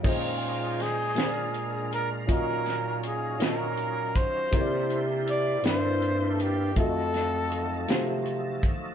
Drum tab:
CC |x-----|------|------|------|
HH |-xxxxx|xxxxxx|xxxxxx|xxxxxx|
SD |--oo--|-o-o--|---o--|-o-o--|
BD |o-----|o----o|o-----|o----o|